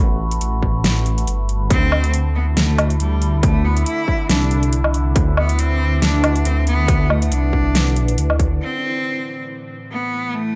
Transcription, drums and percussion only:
0.31 closed hi-hat
0.41 closed hi-hat
0.63 kick
0.84 snare, closed hi-hat
1.06 closed hi-hat
1.18 closed hi-hat
1.27 closed hi-hat
1.49 closed hi-hat
1.70 kick, closed hi-hat
1.92 low woodblock
2.04 closed hi-hat
2.14 closed hi-hat
2.57 snare, closed hi-hat
2.78 closed hi-hat, low woodblock
2.90 closed hi-hat
3.00 closed hi-hat
3.22 closed hi-hat
3.43 kick, closed hi-hat
3.77 closed hi-hat
3.86 closed hi-hat
4.08 kick
4.29 snare, closed hi-hat
4.51 closed hi-hat
4.63 closed hi-hat
4.73 closed hi-hat
4.84 low woodblock
4.94 closed hi-hat
5.16 kick, closed hi-hat
5.37 low woodblock
5.49 closed hi-hat
5.59 closed hi-hat
6.02 snare, closed hi-hat
6.24 closed hi-hat, low woodblock
6.36 closed hi-hat
6.45 closed hi-hat
6.67 closed hi-hat
6.88 kick, closed hi-hat
7.10 low woodblock
7.22 closed hi-hat
7.32 closed hi-hat
7.53 kick
7.75 snare, closed hi-hat
7.96 closed hi-hat
8.08 closed hi-hat
8.18 closed hi-hat
8.30 low woodblock
8.39 kick, closed hi-hat

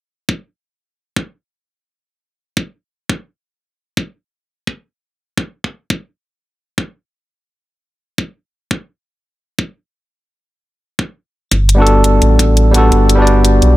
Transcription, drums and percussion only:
0.29 kick
1.16 kick
2.57 kick
3.09 kick
3.97 kick
4.67 kick
5.38 kick
5.64 kick
5.90 kick
6.78 kick
8.18 kick
8.71 kick
9.59 kick
10.99 kick
11.52 kick, closed hi-hat
11.69 closed hi-hat
11.87 closed hi-hat
12.04 closed hi-hat
12.22 closed hi-hat
12.39 kick, closed hi-hat
12.57 closed hi-hat
12.74 closed hi-hat
12.92 closed hi-hat
13.10 closed hi-hat
13.27 closed hi-hat
13.45 closed hi-hat
13.62 closed hi-hat

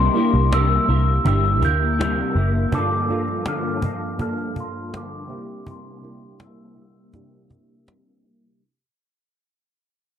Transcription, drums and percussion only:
0.16 cajon slap
0.34 cajon slap
0.53 cajon slap
0.90 cajon slap
1.26 cajon bass, cajon slap
1.45 cajon slap
1.62 cajon bass
2.01 cajon slap
2.36 cajon slap
2.72 cajon bass
3.10 cajon slap
3.28 cajon slap
3.46 cajon slap
3.82 cajon bass
4.19 cajon bass, cajon slap
4.38 cajon slap
4.56 cajon bass
4.94 cajon slap
5.30 cajon slap
5.67 cajon bass
6.04 cajon slap
6.23 cajon slap
6.40 cajon slap
6.78 cajon slap
7.14 cajon bass, cajon slap
7.51 cajon bass
7.88 cajon slap
8.24 cajon slap

